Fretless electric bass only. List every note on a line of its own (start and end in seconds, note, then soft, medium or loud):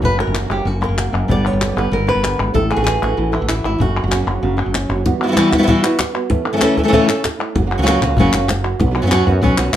0.02 0.23 F#1 medium
0.27 0.47 F#1 medium
0.50 0.64 F#1 medium
0.65 0.86 F#1 medium
0.89 1.10 F#1 medium
1.13 1.27 F#1 medium
1.28 1.49 G1 medium
1.53 1.73 G1 medium
1.77 1.90 G1 medium
1.92 2.12 G1 medium
2.15 2.36 G1 medium
2.39 2.53 G#1 medium
2.54 2.75 A1 medium
2.77 2.98 A1 medium
3.02 3.16 A1 medium
3.18 3.38 A1 medium
3.42 3.62 A1 medium
3.64 3.78 G#1 medium
3.80 4.00 F#1 medium
4.04 4.24 F#1 medium
4.27 4.40 F#1 medium
4.43 4.63 F#1 medium
4.66 4.86 F#1 medium
4.89 5.03 F#1 medium
7.55 7.75 F#1 medium
7.79 7.99 C#2 medium
8.02 8.15 C#2 medium
8.18 8.31 F#1 loud
8.33 8.73 F#1 medium
8.80 9.00 B1 medium
9.03 9.23 F#2 medium
9.27 9.40 F#2 medium
9.42 9.55 B1 medium
9.58 9.72 B1 medium